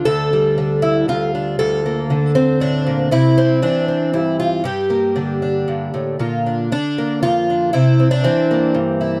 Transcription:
Already playing: D3 D4
0.05 D2 A4
0.33 G3
0.58 D3
0.82 E4
1.08 D2 F4
1.35 D4
1.59 D2 A4
1.86 A#3
2.10 D3
2.35 C4
2.60 A2 D4
2.86 A#2
3.11 C3 E4
3.38 C4
3.62 E3 D4
3.88 C4
4.13 G2 E4
4.40 F4
4.64 G2 G4
4.90 A#3
5.16 D3
5.42 D4
5.68 G2
5.94 A2
6.19 A#2 F4
6.46 D4
6.72 D3 D4
6.98 A#3
7.23 F2 F4
7.50 D4
7.73 C3 E4
8.00 C4
8.11 D4
8.24 E3 C4
8.51 A#3
8.74 G2
9.01 E4

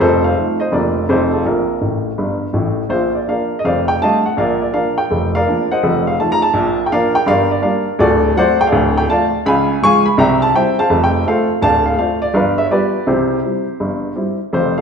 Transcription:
0.00 F1 F2 A4 C5
0.24 C5 F5
0.36 F3 A3 D#4
0.60 C5 D#5
0.72 F1 F2 F3 A#3 D4 A#4 D5
1.09 F1 F2 F3 A3 D#4 A4 C5
1.34 F4 A4
1.45 A#1 A#2 F4 A#4
1.81 A1 A2
2.18 G1 G2
2.53 A1 A2
2.89 A#1 A#2 F4 C5
3.15 D5
3.27 F3 A#3 D4 A#4 D5 F5
3.59 D#5
3.64 F1 F2 C5 D5 F5
3.88 G5
4.01 G3 A3 D4 D#5 F5 A5
4.26 F#5
4.37 A#1 A#2 A#4 D5 F5
4.62 D5
4.73 F3 A#3 D4 A#4 D5 F5
4.98 G5
5.10 F1 F2
5.35 A#4 D5 F5
5.47 F3 A#3 D4
5.71 C5 D#5 F#5
5.83 F1 F2
6.07 F5
6.19 F3 A3 D#4 A5
6.32 A#5
6.42 A5
6.53 A#1 A#2
6.86 G5
6.91 F3 A#3 D4 A#4 D5 F5
7.15 G5
7.26 G1 G2 A#4 D5 F5
7.51 D5
7.62 G3 A#3 D4 A#4 D5 F5
7.99 D1 D2 F#4 A4 D5
8.36 F#3 A3 C4 C5 D5 F#5
8.61 G5
8.67 A4 D5 F5
8.72 D1 D2
8.97 G5
9.09 F3 A3 F4 D5 F5 A5
9.46 C#2 C#3 F5 G#5 B5
9.82 F3 G#3 G#4 F5 G#5 C#6
10.06 B5
10.18 C2 C3 E5 G5 A#5
10.42 A5
10.54 G3 C4 E4 C5 E5 G5
10.79 C5 F5 A5
10.90 F1 F2
11.04 G5
11.26 A3 C4 F4 A4 C5 F5
11.61 D1 D2 D5 F5 A5
11.86 F5
11.97 A3 C4 F4 C5 D5 F5
12.22 D5
12.34 G1 G2 B4 D5 F5
12.58 E5
12.64 C#5
12.71 G3 B3 F4 G4 B4 D5
13.07 C2 C3 E4 G4 C5
13.44 G3 C4 E4
13.80 G1 G2
14.16 G3 C4 E4
14.53 F1 F2 F4 C5
14.78 F5

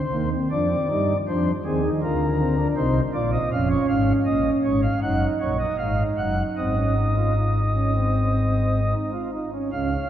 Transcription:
Already playing: C5
0.12 D#2 D#3 A#3
0.32 C4
0.51 F2 F3 D4 D5
0.70 C4
0.89 G2 G3 D#4
1.28 F2 F3 D4 C5
1.65 D#2 D#3 C4 G#4
1.84 D#4
2.03 D2 D3 F4 A#4
2.39 C4
2.58 D4
2.76 C2 C3 D#4 C5
3.14 A#1 A#2 F4 D5
3.33 D#5
3.52 F1 F2 C#4 F5
3.70 C#5
3.88 G#1 G#2 F5
4.26 A#1 A#2 D#5
4.64 G#1 G#2 C#5
4.83 F5
5.02 F#1 F#2 D#4 F#5
5.40 A#1 A#2 C#5
5.59 D#5
5.78 G#1 G#2 F5
6.18 F#1 F#2 F#5
6.57 G#1 G#2 C4 D#5
6.77 C#4
6.97 D#4
7.17 F4
7.36 D#4
7.75 C#4
7.95 C4
8.94 D#4
9.13 F4
9.33 D#4
9.53 C#4
9.72 C#2 C#3 C#4 F5
9.92 C#4

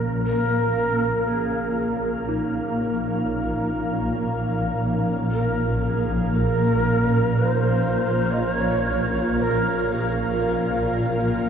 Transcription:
Already playing: A#1 A#2 A#3 C#4 A#4 F5
0.26 A#4
1.27 G#4
2.29 D#4
5.31 A#4
5.83 G#4
6.35 A#4
7.38 B4
7.50 C5
8.31 D#5
8.39 C5
8.51 C#5
9.41 A#4
9.92 G#4
10.42 A#4

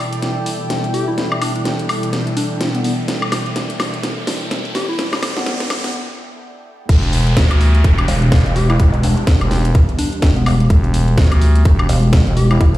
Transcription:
Already playing: B2 E3 G3 E4 A4 D5 G5, riser
0.13 closed hi-hat
0.22 snare, closed hi-hat
0.46 open hi-hat
0.70 snare, closed hi-hat
0.84 closed hi-hat
0.94 G4, open hi-hat
1.08 E4
1.18 E4, snare, closed hi-hat
1.32 high woodblock
1.42 D4, open hi-hat, high woodblock
1.56 D4, closed hi-hat
1.65 snare, closed hi-hat
1.79 closed hi-hat
1.89 open hi-hat, high woodblock
2.03 closed hi-hat
2.13 snare, closed hi-hat
2.27 closed hi-hat
2.37 D4, open hi-hat
2.61 snare, closed hi-hat
2.75 B3, closed hi-hat
2.84 B3, open hi-hat
3.08 snare, closed hi-hat
3.22 high woodblock
3.32 snare, open hi-hat, high woodblock
3.46 closed hi-hat
3.56 snare, closed hi-hat
3.70 closed hi-hat
3.80 snare, open hi-hat, high woodblock
3.94 closed hi-hat
4.03 snare, closed hi-hat
4.27 snare, open hi-hat
4.51 snare, closed hi-hat
4.65 closed hi-hat
4.75 G4, snare, open hi-hat
4.89 E4
4.99 E4, snare, closed hi-hat
5.13 snare, high woodblock
5.23 snare, open hi-hat, high woodblock
5.37 B3, snare, closed hi-hat
5.46 snare, closed hi-hat
5.60 snare, closed hi-hat
5.70 snare, open hi-hat, high woodblock
5.84 B3, snare, closed hi-hat
5.94 B3
6.89 E1 E3 G3 B3 G4, kick, closed hi-hat, crash, downlifter
7.03 closed hi-hat
7.13 open hi-hat
7.27 closed hi-hat
7.37 D2, kick, snare, closed hi-hat
7.51 closed hi-hat, high woodblock
7.61 open hi-hat
7.75 closed hi-hat
7.84 E1, kick, closed hi-hat
7.98 closed hi-hat, high woodblock
8.08 E1, open hi-hat
8.22 closed hi-hat
8.32 kick, snare, closed hi-hat
8.46 E1, closed hi-hat
8.56 G4, open hi-hat
8.70 E4, closed hi-hat, high woodblock
8.80 E1 E4, kick, closed hi-hat
8.94 closed hi-hat
9.03 D4, open hi-hat
9.17 D4, closed hi-hat
9.27 kick, snare, closed hi-hat
9.41 E1, closed hi-hat, high woodblock
9.51 snare, open hi-hat
9.65 closed hi-hat
9.75 kick, closed hi-hat
9.89 closed hi-hat
9.99 D4, open hi-hat
10.13 closed hi-hat
10.22 E1, kick, snare, closed hi-hat
10.36 B3, closed hi-hat
10.46 B3, open hi-hat, high woodblock
10.60 closed hi-hat
10.70 E1, kick, closed hi-hat
10.84 closed hi-hat
10.94 open hi-hat
11.08 closed hi-hat
11.18 D2, kick, snare, closed hi-hat
11.32 closed hi-hat, high woodblock
11.41 open hi-hat
11.56 closed hi-hat
11.65 E1, kick, closed hi-hat
11.79 closed hi-hat, high woodblock
11.89 E1, open hi-hat
12.03 closed hi-hat
12.13 kick, snare, closed hi-hat
12.27 E1, closed hi-hat
12.37 G4, open hi-hat
12.51 E4, closed hi-hat, high woodblock
12.61 E1 E4, kick, closed hi-hat
12.75 closed hi-hat

